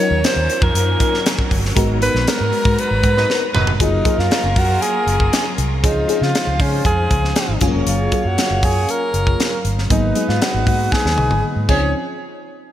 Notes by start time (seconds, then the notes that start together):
Already playing: D#3 F#3 A#3 C#4 C#5
0.00 D#4 F4 A#4
0.11 D#2
0.24 C5, snare, closed hi-hat
0.36 D#2
0.50 closed hi-hat
0.62 F2 A#4, kick
0.74 F#2, closed hi-hat
1.00 kick, closed hi-hat
1.14 snare
1.26 snare, closed hi-hat
1.39 kick
1.51 G1, kick, open hi-hat
1.65 snare
1.75 G#1 G#3 B3 D#4 F#4 A#4 A#5, kick, closed hi-hat
2.01 G#3 B3 D#4 F#4 A#4 B4, closed hi-hat
2.14 A#1, snare
2.27 A#4, snare, closed hi-hat
2.41 G#2
2.53 open hi-hat
2.65 G#2, kick
2.79 B4, closed hi-hat
2.91 G#1
3.03 G#2, kick, closed hi-hat
3.16 F#3 D#4 B4, snare
3.30 snare
3.54 F1 F#3 D#4 B4, mid tom
3.67 floor tom
3.79 F#1 F#3 A#3 C#4 D#4 F4 G#4 A#4, kick, closed hi-hat
4.05 F#3 A#3 C#4 F4 G#4, kick, closed hi-hat
4.18 F#2 F4, snare
4.31 snare, closed hi-hat
4.44 F#1
4.56 F#2 F#4, kick, open hi-hat
4.82 G#4, closed hi-hat
5.07 F#1, closed hi-hat
5.20 kick
5.33 snare, closed hi-hat
5.58 C2, closed hi-hat
5.83 C#2 C#3 F3 G#3 C4 C#4 D#4 F4 G#4 C5, kick, closed hi-hat
6.08 F3 C4 C#4 D#4 G#4, closed hi-hat
6.21 C#3 F4, snare
6.35 snare, closed hi-hat
6.47 C#2
6.60 C#3 C#4, kick, open hi-hat
6.85 F2 G#4, kick, closed hi-hat
7.11 C#2, kick, closed hi-hat
7.24 snare
7.36 snare, closed hi-hat
7.49 G#1
7.61 F#1 F#3 G#3 A#3 C#4 F4 G#4 A#4 C#5, kick, closed hi-hat
7.67 A#3
7.74 F1
7.86 F#1 F4, closed hi-hat
8.12 F#3 A#3 C#4 G#4 F5, kick, closed hi-hat
8.25 F#2 F#4
8.38 snare, closed hi-hat
8.51 F#1
8.63 F#2 G#4, kick, open hi-hat
8.89 A#4, closed hi-hat
9.14 F#1, closed hi-hat
9.27 kick
9.40 snare, closed hi-hat
9.65 G1, closed hi-hat
9.78 snare
9.90 G#1 F#3 A#3 B3 D#4 G#4 B4, kick, closed hi-hat
10.15 F#3 G#3 B3 D#4 G#4, closed hi-hat
10.29 G#2 F4, snare
10.41 F#4, snare, closed hi-hat
10.54 G#1
10.67 G#2 F#4, kick, open hi-hat
10.92 G#4, kick, snare
11.05 D#2, snare
11.18 B1, high tom
11.30 G#1, high tom
11.56 G#2
11.69 C#2 F3 C4 C#4 D#4 G#4 C#5, kick, crash